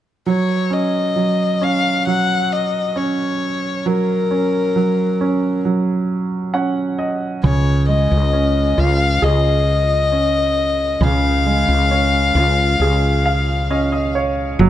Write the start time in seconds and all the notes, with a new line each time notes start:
0.26 F#3 C#5
0.70 C#4 D#5
1.16 F#3
1.61 C#4 F5
2.07 F#3 F#5
2.53 D#5
2.96 C#4 C#5
3.86 F#3 A#4
4.31 C#4
4.76 F#3
5.21 C#4
5.65 F#3
6.54 C#4 F#5
6.99 D#5
7.44 C#2 C#3 C#5
7.89 G#3 D#5
8.11 C#2
8.33 C#4
8.78 C#2 F4 F5
9.22 C#2 G#4 D#5
10.12 C#4
11.01 C#2 C#3 F5
11.46 G#3
11.68 C#2
11.91 C#4
12.35 C#2 F4
12.80 C#2 G#4
13.26 F5
13.70 C#4 D#5
13.92 D#5
14.15 C#5
14.59 F#1 F#3